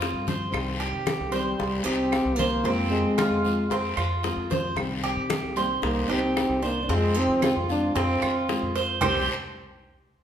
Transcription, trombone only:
1.33 1.86 G3 medium
1.84 2.38 C4 loud
2.37 2.89 A#3 loud
2.90 3.93 G#3 medium
5.57 5.69 G3 medium
5.84 6.12 A#3 medium
6.11 6.63 C4 loud
6.65 6.85 A#3 medium
6.85 6.92 A#3 medium
6.91 7.19 G#3 loud
7.17 7.43 C4 loud
7.44 7.55 C4 loud
7.71 7.99 D4 medium
7.97 8.76 C4 medium
9.02 9.26 G3 medium

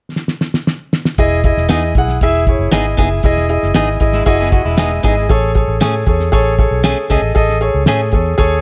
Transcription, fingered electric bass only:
1.18 1.51 E1 loud
1.57 1.68 E1 medium
1.70 1.92 E2 medium
1.96 2.18 B1 medium
2.21 2.54 E1 medium
2.59 2.70 F#1 medium
2.72 2.94 G#1 medium
2.99 3.21 F#1 medium
3.23 3.57 E1 loud
3.63 3.74 F#1 medium
3.76 3.98 G#1 medium
4.00 4.23 G#1 medium
4.26 4.60 F#1 medium
4.65 4.98 E1 medium
5.04 5.26 G#1 medium
5.30 5.63 A1 loud
5.68 5.79 A1 medium
5.81 6.03 A2 medium
6.07 6.29 E2 medium
6.33 6.66 A1 medium
6.71 6.93 B1 medium
7.10 7.21 C#2 medium
7.22 7.34 A1 medium
7.36 7.69 A1 medium
7.74 7.85 C#2 medium
7.87 8.14 A2 medium
8.12 8.35 E2 medium
8.38 8.61 D#2 medium

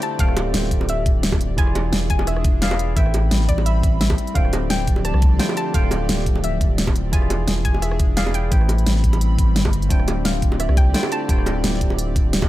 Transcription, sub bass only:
0.19 0.53 D1 loud
0.54 1.57 D1 loud
1.58 1.91 E1 loud
1.93 2.95 E1 loud
2.97 3.30 A1 loud
3.31 3.82 A1 loud
3.83 4.17 A1 medium
4.36 5.13 D1 loud
5.14 5.38 C2 loud
5.74 6.08 D1 loud
6.09 7.12 D1 loud
7.13 7.46 E1 loud
7.48 8.50 E1 loud
8.52 8.85 A1 loud
8.87 9.37 A1 loud
9.39 9.57 A1 medium
9.56 9.72 G1 medium
9.73 9.89 G1 loud
9.90 10.68 D1 loud
10.69 10.93 C2 loud
11.29 11.63 D1 loud
11.64 12.49 D1 loud

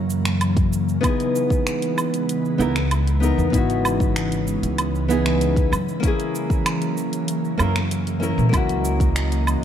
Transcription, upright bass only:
0.00 0.96 F#2 loud
2.60 3.30 C#2 loud
3.38 3.49 E2 medium
3.53 4.55 G#1 medium
4.63 5.65 C#2 medium
5.72 5.83 F#2 medium
7.60 8.30 F#2 loud
8.38 8.49 A#2 loud
8.53 9.55 C#2 medium

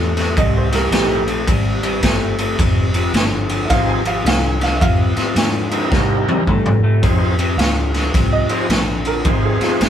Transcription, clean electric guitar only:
0.00 0.12 C3 loud
0.00 0.13 A3 loud
0.17 0.35 C3 medium
0.17 0.35 A3 medium
0.37 0.68 C3 medium
0.37 0.69 G3 medium
0.72 0.90 C3 medium
0.72 0.90 G3 medium
0.92 1.24 C3 medium
0.92 1.24 A3 medium
1.27 1.45 C3 medium
1.27 1.46 A3 medium
1.47 1.79 C3 medium
1.47 1.79 G3 loud
1.83 2.01 C3 medium
1.83 2.01 G3 medium
2.03 2.35 C3 loud
2.03 2.35 A3 loud
2.39 2.57 C3 medium
2.39 2.57 A3 medium
2.59 2.91 F2 medium
2.59 2.91 C3 medium
2.94 3.12 F2 medium
2.94 3.13 C3 medium
3.15 3.46 F2 medium
3.15 3.46 D3 medium
3.50 3.68 F2 medium
3.50 3.68 D3 medium
3.70 4.02 F2 medium
3.70 4.02 C3 medium
4.05 4.23 F2 medium
4.05 4.23 C3 medium
4.24 4.57 F2 medium
4.24 4.57 D3 loud
4.60 4.79 F2 medium
4.60 4.79 D3 medium
4.81 5.13 F2 medium
4.81 5.13 C3 loud
5.16 5.34 F2 medium
5.16 5.35 C3 medium
5.36 5.68 F2 medium
5.36 5.68 D3 medium
5.72 5.90 F2 medium
5.72 5.90 D3 medium
5.93 6.24 C3 medium
5.93 6.24 G3 loud
6.28 6.46 C3 medium
6.28 6.46 G3 medium
6.48 6.80 C3 loud
6.48 6.80 A3 loud
6.83 7.01 C3 medium
6.83 7.02 A3 medium
7.03 7.35 F2 medium
7.03 7.35 C3 medium
7.39 7.57 F2 medium
7.39 7.57 C3 medium
7.59 7.90 F2 medium
7.59 7.91 D3 medium
7.94 8.12 F2 medium
7.94 8.12 D3 medium
8.14 8.46 F2 medium
8.14 8.46 C3 medium
8.50 8.68 F2 medium
8.50 8.68 C3 medium
8.70 9.02 F2 medium
8.70 9.02 D3 loud
9.05 9.23 F2 medium
9.05 9.23 D3 medium
9.26 9.57 F2 medium
9.26 9.58 C3 medium
9.61 9.79 F2 medium
9.61 9.79 C3 medium
9.81 9.89 F2 medium
9.81 9.89 D3 medium

